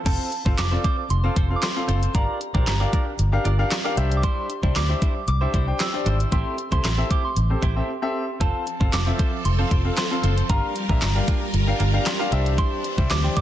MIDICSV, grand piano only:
0, 0, Header, 1, 2, 480
1, 0, Start_track
1, 0, Tempo, 521739
1, 55, Time_signature, 4, 2, 24, 8
1, 12339, End_track
2, 0, Start_track
2, 0, Title_t, "Grand piano"
2, 0, Program_c, 0, 0
2, 52, Note_on_c, 0, 60, 78
2, 53, Note_on_c, 0, 65, 72
2, 55, Note_on_c, 0, 69, 74
2, 56, Note_on_c, 0, 77, 86
2, 251, Note_off_c, 0, 60, 0
2, 252, Note_off_c, 0, 65, 0
2, 253, Note_off_c, 0, 69, 0
2, 253, Note_off_c, 0, 77, 0
2, 419, Note_on_c, 0, 60, 79
2, 421, Note_on_c, 0, 65, 69
2, 423, Note_on_c, 0, 69, 66
2, 424, Note_on_c, 0, 77, 87
2, 544, Note_off_c, 0, 60, 0
2, 545, Note_off_c, 0, 65, 0
2, 546, Note_off_c, 0, 69, 0
2, 547, Note_off_c, 0, 77, 0
2, 660, Note_on_c, 0, 60, 81
2, 661, Note_on_c, 0, 65, 75
2, 663, Note_on_c, 0, 69, 70
2, 664, Note_on_c, 0, 74, 89
2, 920, Note_off_c, 0, 60, 0
2, 921, Note_off_c, 0, 65, 0
2, 921, Note_off_c, 0, 69, 0
2, 922, Note_off_c, 0, 74, 0
2, 1140, Note_on_c, 0, 60, 78
2, 1141, Note_on_c, 0, 65, 70
2, 1143, Note_on_c, 0, 69, 70
2, 1144, Note_on_c, 0, 77, 84
2, 1265, Note_off_c, 0, 60, 0
2, 1265, Note_off_c, 0, 65, 0
2, 1266, Note_off_c, 0, 69, 0
2, 1267, Note_off_c, 0, 77, 0
2, 1379, Note_on_c, 0, 60, 74
2, 1381, Note_on_c, 0, 65, 69
2, 1382, Note_on_c, 0, 69, 71
2, 1384, Note_on_c, 0, 77, 87
2, 1504, Note_off_c, 0, 60, 0
2, 1505, Note_off_c, 0, 65, 0
2, 1506, Note_off_c, 0, 69, 0
2, 1507, Note_off_c, 0, 77, 0
2, 1619, Note_on_c, 0, 60, 79
2, 1621, Note_on_c, 0, 65, 74
2, 1623, Note_on_c, 0, 69, 72
2, 1624, Note_on_c, 0, 77, 89
2, 1813, Note_off_c, 0, 60, 0
2, 1814, Note_off_c, 0, 65, 0
2, 1815, Note_off_c, 0, 69, 0
2, 1816, Note_off_c, 0, 77, 0
2, 1973, Note_on_c, 0, 62, 76
2, 1975, Note_on_c, 0, 67, 74
2, 1976, Note_on_c, 0, 70, 72
2, 1978, Note_on_c, 0, 77, 88
2, 2172, Note_off_c, 0, 62, 0
2, 2173, Note_off_c, 0, 67, 0
2, 2174, Note_off_c, 0, 70, 0
2, 2174, Note_off_c, 0, 77, 0
2, 2340, Note_on_c, 0, 62, 77
2, 2342, Note_on_c, 0, 67, 67
2, 2344, Note_on_c, 0, 70, 72
2, 2345, Note_on_c, 0, 72, 85
2, 2465, Note_off_c, 0, 62, 0
2, 2466, Note_off_c, 0, 67, 0
2, 2466, Note_off_c, 0, 70, 0
2, 2467, Note_off_c, 0, 72, 0
2, 2580, Note_on_c, 0, 62, 79
2, 2582, Note_on_c, 0, 67, 76
2, 2583, Note_on_c, 0, 70, 76
2, 2585, Note_on_c, 0, 77, 92
2, 2840, Note_off_c, 0, 62, 0
2, 2841, Note_off_c, 0, 67, 0
2, 2842, Note_off_c, 0, 70, 0
2, 2842, Note_off_c, 0, 77, 0
2, 3060, Note_on_c, 0, 62, 96
2, 3061, Note_on_c, 0, 67, 83
2, 3063, Note_on_c, 0, 70, 86
2, 3064, Note_on_c, 0, 77, 99
2, 3185, Note_off_c, 0, 62, 0
2, 3185, Note_off_c, 0, 67, 0
2, 3186, Note_off_c, 0, 70, 0
2, 3187, Note_off_c, 0, 77, 0
2, 3300, Note_on_c, 0, 62, 96
2, 3301, Note_on_c, 0, 67, 82
2, 3303, Note_on_c, 0, 70, 83
2, 3304, Note_on_c, 0, 77, 105
2, 3425, Note_off_c, 0, 62, 0
2, 3425, Note_off_c, 0, 67, 0
2, 3426, Note_off_c, 0, 70, 0
2, 3427, Note_off_c, 0, 77, 0
2, 3539, Note_on_c, 0, 62, 96
2, 3541, Note_on_c, 0, 67, 88
2, 3542, Note_on_c, 0, 70, 87
2, 3544, Note_on_c, 0, 77, 108
2, 3638, Note_off_c, 0, 62, 0
2, 3640, Note_off_c, 0, 67, 0
2, 3652, Note_on_c, 0, 62, 105
2, 3654, Note_on_c, 0, 67, 91
2, 3655, Note_off_c, 0, 70, 0
2, 3655, Note_on_c, 0, 72, 93
2, 3656, Note_off_c, 0, 77, 0
2, 3657, Note_on_c, 0, 76, 109
2, 4134, Note_off_c, 0, 62, 0
2, 4135, Note_off_c, 0, 67, 0
2, 4135, Note_off_c, 0, 72, 0
2, 4136, Note_off_c, 0, 76, 0
2, 4260, Note_on_c, 0, 62, 76
2, 4261, Note_on_c, 0, 67, 71
2, 4263, Note_on_c, 0, 72, 72
2, 4264, Note_on_c, 0, 74, 87
2, 4385, Note_off_c, 0, 62, 0
2, 4385, Note_off_c, 0, 67, 0
2, 4386, Note_off_c, 0, 72, 0
2, 4387, Note_off_c, 0, 74, 0
2, 4500, Note_on_c, 0, 62, 81
2, 4501, Note_on_c, 0, 67, 72
2, 4503, Note_on_c, 0, 72, 75
2, 4504, Note_on_c, 0, 76, 92
2, 4760, Note_off_c, 0, 62, 0
2, 4761, Note_off_c, 0, 67, 0
2, 4761, Note_off_c, 0, 72, 0
2, 4762, Note_off_c, 0, 76, 0
2, 4980, Note_on_c, 0, 62, 74
2, 4981, Note_on_c, 0, 67, 70
2, 4983, Note_on_c, 0, 72, 73
2, 4984, Note_on_c, 0, 76, 83
2, 5104, Note_off_c, 0, 62, 0
2, 5105, Note_off_c, 0, 67, 0
2, 5106, Note_off_c, 0, 72, 0
2, 5107, Note_off_c, 0, 76, 0
2, 5220, Note_on_c, 0, 62, 82
2, 5221, Note_on_c, 0, 67, 73
2, 5223, Note_on_c, 0, 72, 74
2, 5224, Note_on_c, 0, 79, 88
2, 5344, Note_off_c, 0, 62, 0
2, 5345, Note_off_c, 0, 67, 0
2, 5346, Note_off_c, 0, 72, 0
2, 5347, Note_off_c, 0, 79, 0
2, 5459, Note_on_c, 0, 62, 81
2, 5461, Note_on_c, 0, 67, 75
2, 5463, Note_on_c, 0, 72, 74
2, 5464, Note_on_c, 0, 74, 89
2, 5653, Note_off_c, 0, 62, 0
2, 5654, Note_off_c, 0, 67, 0
2, 5655, Note_off_c, 0, 72, 0
2, 5656, Note_off_c, 0, 74, 0
2, 5812, Note_on_c, 0, 60, 79
2, 5814, Note_on_c, 0, 67, 75
2, 5815, Note_on_c, 0, 69, 73
2, 5817, Note_on_c, 0, 76, 89
2, 6011, Note_off_c, 0, 60, 0
2, 6012, Note_off_c, 0, 67, 0
2, 6013, Note_off_c, 0, 69, 0
2, 6014, Note_off_c, 0, 76, 0
2, 6180, Note_on_c, 0, 60, 77
2, 6181, Note_on_c, 0, 67, 69
2, 6183, Note_on_c, 0, 69, 69
2, 6184, Note_on_c, 0, 76, 86
2, 6304, Note_off_c, 0, 60, 0
2, 6305, Note_off_c, 0, 67, 0
2, 6306, Note_off_c, 0, 69, 0
2, 6307, Note_off_c, 0, 76, 0
2, 6420, Note_on_c, 0, 60, 77
2, 6422, Note_on_c, 0, 67, 75
2, 6423, Note_on_c, 0, 69, 76
2, 6424, Note_on_c, 0, 76, 93
2, 6680, Note_off_c, 0, 60, 0
2, 6681, Note_off_c, 0, 67, 0
2, 6682, Note_off_c, 0, 69, 0
2, 6682, Note_off_c, 0, 76, 0
2, 6900, Note_on_c, 0, 60, 73
2, 6901, Note_on_c, 0, 67, 68
2, 6903, Note_on_c, 0, 69, 71
2, 6905, Note_on_c, 0, 72, 80
2, 7025, Note_off_c, 0, 60, 0
2, 7025, Note_off_c, 0, 67, 0
2, 7026, Note_off_c, 0, 69, 0
2, 7027, Note_off_c, 0, 72, 0
2, 7140, Note_on_c, 0, 60, 77
2, 7142, Note_on_c, 0, 67, 69
2, 7143, Note_on_c, 0, 69, 73
2, 7145, Note_on_c, 0, 76, 83
2, 7265, Note_off_c, 0, 60, 0
2, 7265, Note_off_c, 0, 67, 0
2, 7266, Note_off_c, 0, 69, 0
2, 7267, Note_off_c, 0, 76, 0
2, 7379, Note_on_c, 0, 60, 90
2, 7381, Note_on_c, 0, 67, 86
2, 7382, Note_on_c, 0, 69, 85
2, 7384, Note_on_c, 0, 76, 105
2, 7573, Note_off_c, 0, 60, 0
2, 7574, Note_off_c, 0, 67, 0
2, 7575, Note_off_c, 0, 69, 0
2, 7576, Note_off_c, 0, 76, 0
2, 7733, Note_on_c, 0, 60, 80
2, 7734, Note_on_c, 0, 65, 69
2, 7736, Note_on_c, 0, 69, 76
2, 7737, Note_on_c, 0, 77, 84
2, 7932, Note_off_c, 0, 60, 0
2, 7932, Note_off_c, 0, 65, 0
2, 7933, Note_off_c, 0, 69, 0
2, 7934, Note_off_c, 0, 77, 0
2, 8100, Note_on_c, 0, 60, 77
2, 8102, Note_on_c, 0, 65, 71
2, 8103, Note_on_c, 0, 69, 70
2, 8104, Note_on_c, 0, 77, 85
2, 8225, Note_off_c, 0, 60, 0
2, 8225, Note_off_c, 0, 65, 0
2, 8226, Note_off_c, 0, 69, 0
2, 8227, Note_off_c, 0, 77, 0
2, 8340, Note_on_c, 0, 60, 80
2, 8341, Note_on_c, 0, 65, 73
2, 8343, Note_on_c, 0, 69, 76
2, 8344, Note_on_c, 0, 76, 87
2, 8600, Note_off_c, 0, 60, 0
2, 8601, Note_off_c, 0, 65, 0
2, 8601, Note_off_c, 0, 69, 0
2, 8602, Note_off_c, 0, 76, 0
2, 8820, Note_on_c, 0, 60, 76
2, 8822, Note_on_c, 0, 65, 67
2, 8823, Note_on_c, 0, 69, 69
2, 8824, Note_on_c, 0, 77, 84
2, 8944, Note_off_c, 0, 60, 0
2, 8945, Note_off_c, 0, 65, 0
2, 8946, Note_off_c, 0, 69, 0
2, 8947, Note_off_c, 0, 77, 0
2, 9060, Note_on_c, 0, 60, 78
2, 9061, Note_on_c, 0, 65, 73
2, 9063, Note_on_c, 0, 69, 74
2, 9064, Note_on_c, 0, 77, 86
2, 9185, Note_off_c, 0, 60, 0
2, 9185, Note_off_c, 0, 65, 0
2, 9186, Note_off_c, 0, 69, 0
2, 9187, Note_off_c, 0, 77, 0
2, 9300, Note_on_c, 0, 60, 81
2, 9301, Note_on_c, 0, 65, 72
2, 9303, Note_on_c, 0, 69, 76
2, 9305, Note_on_c, 0, 77, 86
2, 9493, Note_off_c, 0, 60, 0
2, 9494, Note_off_c, 0, 65, 0
2, 9495, Note_off_c, 0, 69, 0
2, 9496, Note_off_c, 0, 77, 0
2, 9653, Note_on_c, 0, 62, 77
2, 9655, Note_on_c, 0, 67, 74
2, 9656, Note_on_c, 0, 70, 73
2, 9658, Note_on_c, 0, 77, 87
2, 9852, Note_off_c, 0, 62, 0
2, 9853, Note_off_c, 0, 67, 0
2, 9853, Note_off_c, 0, 70, 0
2, 9854, Note_off_c, 0, 77, 0
2, 10021, Note_on_c, 0, 62, 79
2, 10022, Note_on_c, 0, 67, 74
2, 10024, Note_on_c, 0, 70, 71
2, 10025, Note_on_c, 0, 76, 84
2, 10145, Note_off_c, 0, 62, 0
2, 10146, Note_off_c, 0, 67, 0
2, 10146, Note_off_c, 0, 70, 0
2, 10147, Note_off_c, 0, 76, 0
2, 10260, Note_on_c, 0, 62, 83
2, 10262, Note_on_c, 0, 67, 76
2, 10263, Note_on_c, 0, 70, 74
2, 10265, Note_on_c, 0, 77, 93
2, 10520, Note_off_c, 0, 62, 0
2, 10521, Note_off_c, 0, 67, 0
2, 10522, Note_off_c, 0, 70, 0
2, 10523, Note_off_c, 0, 77, 0
2, 10740, Note_on_c, 0, 62, 93
2, 10741, Note_on_c, 0, 67, 85
2, 10743, Note_on_c, 0, 70, 86
2, 10745, Note_on_c, 0, 77, 101
2, 10865, Note_off_c, 0, 62, 0
2, 10865, Note_off_c, 0, 67, 0
2, 10866, Note_off_c, 0, 70, 0
2, 10867, Note_off_c, 0, 77, 0
2, 10980, Note_on_c, 0, 62, 97
2, 10981, Note_on_c, 0, 67, 88
2, 10983, Note_on_c, 0, 70, 84
2, 10985, Note_on_c, 0, 77, 105
2, 11095, Note_on_c, 0, 84, 82
2, 11105, Note_off_c, 0, 62, 0
2, 11105, Note_off_c, 0, 67, 0
2, 11106, Note_off_c, 0, 70, 0
2, 11107, Note_off_c, 0, 77, 0
2, 11220, Note_on_c, 0, 62, 97
2, 11222, Note_on_c, 0, 67, 88
2, 11223, Note_on_c, 0, 70, 89
2, 11225, Note_on_c, 0, 77, 106
2, 11318, Note_off_c, 0, 62, 0
2, 11320, Note_off_c, 0, 67, 0
2, 11332, Note_on_c, 0, 62, 102
2, 11334, Note_on_c, 0, 67, 94
2, 11335, Note_on_c, 0, 72, 93
2, 11336, Note_off_c, 0, 70, 0
2, 11336, Note_off_c, 0, 77, 0
2, 11337, Note_on_c, 0, 76, 112
2, 11541, Note_off_c, 0, 84, 0
2, 11814, Note_off_c, 0, 62, 0
2, 11814, Note_off_c, 0, 67, 0
2, 11815, Note_off_c, 0, 72, 0
2, 11816, Note_off_c, 0, 76, 0
2, 11939, Note_on_c, 0, 62, 77
2, 11941, Note_on_c, 0, 67, 71
2, 11943, Note_on_c, 0, 72, 74
2, 11944, Note_on_c, 0, 76, 91
2, 12064, Note_off_c, 0, 62, 0
2, 12065, Note_off_c, 0, 67, 0
2, 12066, Note_off_c, 0, 72, 0
2, 12067, Note_off_c, 0, 76, 0
2, 12179, Note_on_c, 0, 62, 83
2, 12180, Note_on_c, 0, 67, 75
2, 12182, Note_on_c, 0, 72, 74
2, 12184, Note_on_c, 0, 79, 92
2, 12339, Note_off_c, 0, 62, 0
2, 12339, Note_off_c, 0, 67, 0
2, 12339, Note_off_c, 0, 72, 0
2, 12339, Note_off_c, 0, 79, 0
2, 12339, End_track
0, 0, End_of_file